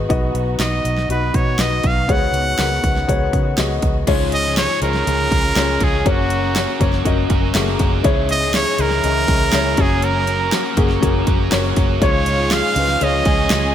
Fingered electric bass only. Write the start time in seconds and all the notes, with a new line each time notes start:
0.10 B1
0.34 B1
0.59 B1
0.85 B1
1.09 B1
1.34 B2
1.59 B1
1.84 B1
2.09 C#2
2.33 C#2
2.59 C#2
2.84 C#2
3.08 C#2
3.33 C#3
3.58 C#2
3.83 C#2
4.08 C#2
4.82 C#2
5.07 C#2
5.32 C#2
5.56 C#2
5.81 C#2
6.06 F#1
6.80 F#1
7.06 F#1
7.30 F#1
7.55 F#1
7.80 F#1
8.05 C#2
8.79 C#2
9.04 C#2
9.29 C#2
9.54 C#2
9.78 F#1
10.77 F#1
11.03 F#1
11.27 F#1
11.53 F#1
11.77 F#1
12.02 C#2
12.76 C#2
13.01 C#2
13.26 C#2
13.51 C#2